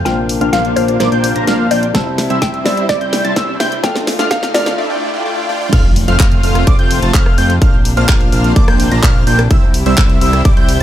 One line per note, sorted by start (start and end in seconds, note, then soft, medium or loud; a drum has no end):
0.00 3.80 C3 medium
0.00 riser medium
0.04 0.39 A#1 medium
0.04 0.73 A#2 medium
0.04 0.73 A#3 medium
0.04 0.19 A#3 medium
0.04 1.93 A#3 medium
0.04 0.74 D4 medium
0.04 0.19 D4 medium
0.04 1.93 D4 medium
0.04 0.19 F4 medium
0.04 0.74 F4 medium
0.04 0.19 C5 medium
0.04 0.74 C5 medium
0.04 0.19 F5 medium
0.04 0.54 G5 loud
0.04 0.19 F6 medium
0.04 snare medium
0.04 closed hi-hat medium
0.29 open hi-hat loud
0.41 0.51 A#1 loud
0.41 0.50 A#3 medium
0.41 0.50 D4 medium
0.41 0.50 F4 medium
0.41 0.50 C5 medium
0.41 0.50 F5 loud
0.41 0.50 F6 loud
0.41 closed hi-hat medium
0.53 0.74 A#1 medium
0.53 0.74 A#3 medium
0.53 0.74 D4 medium
0.53 0.74 F4 medium
0.53 0.74 C5 medium
0.53 0.77 F5 loud
0.53 0.74 F5 medium
0.53 0.74 F6 medium
0.53 snare medium
0.53 closed hi-hat medium
0.65 closed hi-hat soft
0.75 0.98 A#1 loud
0.75 1.91 A#2 medium
0.75 1.92 A#3 medium
0.75 0.97 A#3 medium
0.75 0.97 D4 medium
0.75 1.92 D4 medium
0.75 0.97 F4 medium
0.75 1.92 F4 medium
0.75 0.99 C5 medium
0.75 0.97 C5 medium
0.75 0.97 F5 medium
0.75 1.92 F5 medium
0.75 0.97 F6 medium
0.75 open hi-hat medium
0.88 closed hi-hat medium
1.00 1.10 A#1 loud
1.00 1.09 A#3 loud
1.00 1.09 D4 medium
1.00 1.09 F4 medium
1.00 1.73 C5 medium
1.00 1.09 C5 medium
1.00 1.09 D5 loud
1.00 1.09 D6 loud
1.00 snare medium
1.00 closed hi-hat medium
1.12 1.33 A#1 loud
1.12 1.33 A#3 loud
1.12 1.33 D4 medium
1.12 1.33 F4 medium
1.12 1.33 C5 medium
1.12 1.33 G5 loud
1.12 1.33 G6 loud
1.12 closed hi-hat soft
1.24 open hi-hat loud
1.36 1.45 A#1 loud
1.36 1.45 A#3 medium
1.36 1.45 D4 medium
1.36 1.45 F4 medium
1.36 1.45 C5 medium
1.36 1.45 A#5 medium
1.36 1.45 A#6 medium
1.36 closed hi-hat medium
1.47 1.69 A#1 loud
1.47 1.68 A#3 medium
1.47 1.68 D4 medium
1.47 1.68 F4 medium
1.47 1.68 C5 medium
1.47 1.68 F5 loud
1.47 1.68 F6 loud
1.47 snare medium
1.47 closed hi-hat medium
1.71 1.92 A#1 medium
1.71 1.85 A#3 loud
1.71 1.85 D4 medium
1.71 1.85 F4 medium
1.71 1.85 C5 medium
1.71 1.95 D5 medium
1.71 1.85 G5 loud
1.71 1.85 G6 loud
1.71 open hi-hat medium
1.83 closed hi-hat medium
1.93 2.28 C2 medium
1.93 2.62 C3 medium
1.93 2.62 G3 medium
1.93 2.08 G3 medium
1.93 3.82 G3 medium
1.93 2.63 C4 medium
1.93 2.08 C4 medium
1.93 2.08 E4 medium
1.93 3.82 E4 medium
1.93 2.63 E4 medium
1.93 2.08 C5 medium
1.93 2.63 C5 medium
1.93 2.08 E5 medium
1.93 2.43 A5 loud
1.93 2.08 E6 medium
1.93 kick loud
1.93 snare medium
1.93 closed hi-hat medium
2.18 snare medium
2.18 open hi-hat loud
2.30 2.40 C2 loud
2.30 2.39 G3 medium
2.30 2.39 C4 medium
2.30 2.39 E4 medium
2.30 2.39 C5 medium
2.30 2.39 E5 loud
2.30 2.39 E6 loud
2.30 closed hi-hat soft
2.42 2.63 C2 medium
2.42 2.63 G3 medium
2.42 2.63 C4 medium
2.42 2.63 E4 medium
2.42 2.63 C5 medium
2.42 2.63 E5 medium
2.42 2.66 G5 loud
2.42 2.63 E6 medium
2.42 kick loud
2.42 snare medium
2.42 closed hi-hat medium
2.54 closed hi-hat soft
2.64 2.87 C2 loud
2.64 3.80 C3 medium
2.64 3.81 G3 medium
2.64 2.86 G3 medium
2.64 2.86 C4 medium
2.64 3.81 C4 medium
2.64 2.86 E4 medium
2.64 3.81 E4 medium
2.64 2.86 C5 medium
2.64 2.88 D5 medium
2.64 2.86 E5 medium
2.64 3.81 E5 medium
2.64 2.86 E6 medium
2.64 snare medium
2.64 open hi-hat loud
2.77 closed hi-hat soft
2.89 2.99 C2 medium
2.89 2.98 G3 loud
2.89 2.98 C4 medium
2.89 2.98 E4 medium
2.89 2.98 C5 medium
2.89 3.62 D5 loud
2.89 2.98 D5 loud
2.89 2.98 D6 loud
2.89 kick loud
2.89 snare medium
2.89 closed hi-hat medium
3.01 3.22 C2 loud
3.01 3.22 G3 loud
3.01 3.22 C4 medium
3.01 3.22 E4 medium
3.01 3.22 C5 medium
3.01 3.22 G5 loud
3.01 3.22 G6 loud
3.01 closed hi-hat soft
3.13 snare medium
3.13 open hi-hat loud
3.25 3.34 C2 loud
3.25 3.34 G3 medium
3.25 3.34 C4 medium
3.25 3.34 E4 medium
3.25 3.34 C5 medium
3.25 3.34 A5 medium
3.25 3.34 A6 medium
3.25 closed hi-hat medium
3.36 3.58 C2 loud
3.36 3.56 G3 loud
3.36 3.56 C4 medium
3.36 3.56 E4 medium
3.36 3.56 C5 medium
3.36 3.56 E5 loud
3.36 3.56 E6 loud
3.36 kick loud
3.36 snare medium
3.36 closed hi-hat medium
3.60 3.81 C2 medium
3.60 3.74 G3 loud
3.60 3.74 C4 medium
3.60 3.74 E4 medium
3.60 3.74 C5 medium
3.60 3.84 E5 medium
3.60 3.74 G5 loud
3.60 3.74 G6 loud
3.60 snare medium
3.60 open hi-hat loud
3.72 closed hi-hat medium
3.82 4.17 D2 medium
3.82 4.77 D3 medium
3.82 4.51 F3 medium
3.82 4.51 A3 medium
3.82 4.77 A3 medium
3.82 3.97 A3 medium
3.82 3.97 D4 medium
3.82 4.52 D4 medium
3.82 4.77 F4 medium
3.82 3.97 F4 medium
3.82 4.52 A4 medium
3.82 3.97 D5 medium
3.82 3.97 F5 medium
3.82 4.32 G5 loud
3.82 3.97 F6 medium
3.82 kick loud
3.82 snare medium
3.82 closed hi-hat medium
3.96 snare medium
3.96 closed hi-hat soft
4.07 snare medium
4.07 open hi-hat loud
4.19 4.29 D2 loud
4.19 4.28 A3 medium
4.19 4.28 D4 medium
4.19 4.28 F4 medium
4.19 4.28 D5 medium
4.19 4.28 F5 medium
4.19 4.28 F6 loud
4.19 snare medium
4.19 closed hi-hat soft
4.31 4.52 D2 loud
4.31 4.55 F5 medium
4.31 4.52 F6 medium
4.31 kick loud
4.31 snare loud
4.31 closed hi-hat medium
4.43 snare medium
4.43 closed hi-hat soft
4.54 4.76 D2 loud
4.54 4.78 F3 medium
4.54 4.78 A3 medium
4.54 4.75 A3 medium
4.54 4.75 D4 medium
4.54 4.78 D4 medium
4.54 4.75 F4 medium
4.54 4.79 D5 medium
4.54 4.75 D5 medium
4.54 4.78 D5 loud
4.54 4.75 F5 medium
4.54 4.75 F6 medium
4.54 snare loud
4.54 open hi-hat loud
4.66 snare medium
4.66 closed hi-hat soft
4.78 4.87 A3 loud
4.78 4.87 D4 medium
4.78 4.87 F4 medium
4.78 4.87 D5 medium
4.78 4.87 E5 loud
4.78 swell medium
4.90 5.11 A3 medium
4.90 5.11 D4 medium
4.90 5.11 F4 medium
4.90 5.11 D5 medium
4.90 5.11 G5 loud
5.14 5.23 A3 medium
5.14 5.23 D4 medium
5.14 5.23 F4 medium
5.14 5.23 D5 medium
5.14 5.23 G5 medium
5.25 5.46 A3 medium
5.25 5.46 D4 medium
5.25 5.46 F4 medium
5.25 5.46 D5 medium
5.25 5.46 G5 medium
5.49 5.59 A3 medium
5.49 5.59 D4 medium
5.49 5.59 F4 medium
5.49 5.59 D5 medium
5.49 5.59 G5 loud
5.61 5.71 A3 medium
5.61 5.71 D4 medium
5.61 5.71 F4 medium
5.61 5.71 D5 medium
5.61 5.71 G5 loud
5.73 6.06 F1 loud
5.73 10.83 C3 medium
5.73 5.86 A3 medium
5.73 7.60 A3 medium
5.73 5.86 C4 medium
5.73 5.86 F4 medium
5.73 7.60 F4 medium
5.73 5.86 C5 medium
5.73 5.86 F6 medium
5.73 kick loud
5.73 closed hi-hat medium
5.73 crash loud
5.73 impact medium
5.96 open hi-hat loud
6.08 6.17 F1 loud
6.08 6.17 A3 medium
6.08 6.17 C4 medium
6.08 6.17 F4 medium
6.08 6.17 C5 medium
6.08 6.17 F5 loud
6.08 6.17 F6 loud
6.08 closed hi-hat medium
6.20 6.41 F1 loud
6.20 6.41 A3 medium
6.20 6.41 C4 medium
6.20 6.41 F4 medium
6.20 6.41 C5 medium
6.20 6.41 F5 loud
6.20 6.41 F6 medium
6.20 kick loud
6.20 clap loud
6.20 closed hi-hat medium
6.32 closed hi-hat soft
6.43 6.65 F1 loud
6.43 6.64 A3 medium
6.43 6.64 C4 medium
6.43 6.64 F4 medium
6.43 6.64 C5 medium
6.43 6.64 F5 medium
6.43 6.64 F6 medium
6.43 open hi-hat medium
6.55 cross-stick medium
6.55 closed hi-hat medium
6.67 6.77 F1 loud
6.67 6.76 A3 loud
6.67 6.76 C4 medium
6.67 6.76 F4 loud
6.67 6.76 C5 medium
6.67 6.76 D5 loud
6.67 6.76 D6 loud
6.67 kick loud
6.67 closed hi-hat medium
6.79 7.00 F1 loud
6.79 7.00 A3 loud
6.79 7.00 C4 medium
6.79 7.00 F4 medium
6.79 7.00 C5 medium
6.79 7.00 G5 loud
6.79 7.00 G6 loud
6.79 closed hi-hat soft
6.91 open hi-hat loud
7.02 7.12 F1 loud
7.02 7.12 A3 medium
7.02 7.12 C4 medium
7.02 7.12 F4 medium
7.02 7.12 C5 medium
7.02 7.12 A5 medium
7.02 7.12 A6 medium
7.02 closed hi-hat medium
7.14 7.36 F1 loud
7.14 7.34 A3 loud
7.14 7.34 C4 medium
7.14 7.34 F4 medium
7.14 7.34 C5 medium
7.14 7.34 F5 loud
7.14 7.34 F6 loud
7.14 kick loud
7.14 clap loud
7.14 closed hi-hat medium
7.26 cross-stick medium
7.38 7.59 F2 loud
7.38 7.52 A3 medium
7.38 7.52 C4 medium
7.38 7.52 F4 medium
7.38 7.52 C5 medium
7.38 7.52 G5 loud
7.38 7.52 G6 loud
7.38 open hi-hat loud
7.50 closed hi-hat medium
7.62 7.95 A#1 loud
7.62 9.49 A#3 medium
7.62 7.75 A#3 medium
7.62 7.75 D4 medium
7.62 9.49 D4 medium
7.62 7.75 F4 medium
7.62 7.75 C5 medium
7.62 7.75 F5 medium
7.62 7.75 F6 medium
7.62 kick loud
7.62 closed hi-hat medium
7.85 open hi-hat loud
7.97 8.06 A#1 loud
7.97 8.06 A#3 medium
7.97 8.06 D4 medium
7.97 8.06 F4 medium
7.97 8.06 C5 medium
7.97 8.06 F5 loud
7.97 8.06 F6 loud
7.97 closed hi-hat medium
8.09 8.30 A#1 loud
8.09 kick loud
8.09 clap loud
8.09 closed hi-hat medium
8.21 closed hi-hat soft
8.32 8.54 A#1 loud
8.32 8.53 A#3 medium
8.32 8.53 D4 medium
8.32 8.53 F4 medium
8.32 8.53 C5 medium
8.32 8.53 F5 medium
8.32 8.53 F6 medium
8.32 open hi-hat loud
8.44 closed hi-hat medium
8.56 8.66 A#1 loud
8.56 8.65 A#3 loud
8.56 8.65 D4 medium
8.56 8.65 F4 medium
8.56 8.65 C5 medium
8.56 8.65 D5 loud
8.56 8.65 D6 loud
8.56 kick loud
8.56 closed hi-hat medium
8.68 8.89 A#1 loud
8.68 8.89 A#3 medium
8.68 8.89 D4 medium
8.68 8.89 F4 medium
8.68 8.89 C5 medium
8.68 8.89 G5 loud
8.68 8.89 G6 loud
8.68 cross-stick medium
8.68 closed hi-hat soft
8.80 open hi-hat loud
8.92 9.01 A#1 medium
8.92 9.01 A#3 medium
8.92 9.01 D4 medium
8.92 9.01 F4 medium
8.92 9.01 C5 medium
8.92 9.01 A#5 medium
8.92 9.01 A#6 medium
8.92 closed hi-hat medium
9.03 9.25 A#1 loud
9.03 9.23 A#3 loud
9.03 9.23 D4 medium
9.03 9.23 F4 medium
9.03 9.23 C5 medium
9.03 9.23 F5 loud
9.03 9.23 F6 loud
9.03 kick loud
9.03 clap loud
9.03 closed hi-hat medium
9.27 9.48 A#1 medium
9.27 9.41 A#3 loud
9.27 9.41 D4 medium
9.27 9.41 F4 medium
9.27 9.41 C5 medium
9.27 9.41 G5 loud
9.27 9.41 G6 loud
9.27 open hi-hat loud
9.39 cross-stick medium
9.39 closed hi-hat soft
9.51 9.84 C2 medium
9.51 9.64 G3 medium
9.51 10.83 G3 medium
9.51 9.64 C4 medium
9.51 9.64 E4 medium
9.51 10.83 E4 medium
9.51 9.64 C5 medium
9.51 9.64 E5 medium
9.51 9.64 E6 medium
9.51 kick loud
9.51 closed hi-hat medium
9.74 open hi-hat loud
9.86 9.95 C2 loud
9.86 9.95 G3 medium
9.86 9.95 C4 medium
9.86 9.95 E4 medium
9.86 9.95 C5 medium
9.86 9.95 E5 loud
9.86 9.95 E6 loud
9.86 closed hi-hat medium
9.98 10.19 C2 loud
9.98 kick loud
9.98 clap loud
9.98 closed hi-hat medium
10.10 closed hi-hat soft
10.21 10.43 C2 loud
10.21 10.42 G3 medium
10.21 10.42 C4 medium
10.21 10.42 E4 medium
10.21 10.42 C5 medium
10.21 10.42 E5 medium
10.21 10.42 E6 medium
10.21 open hi-hat loud
10.33 cross-stick medium
10.33 closed hi-hat soft
10.45 10.55 C2 loud
10.45 10.54 C4 medium
10.45 10.54 E4 medium
10.45 10.54 C5 medium
10.45 10.54 D5 loud
10.45 10.54 D6 loud
10.45 kick loud
10.45 closed hi-hat medium
10.57 10.78 C2 loud
10.57 10.78 G3 loud
10.57 10.78 C4 medium
10.57 10.78 E4 medium
10.57 10.78 C5 medium
10.57 10.78 G5 loud
10.57 10.78 G6 loud
10.57 closed hi-hat soft
10.69 open hi-hat loud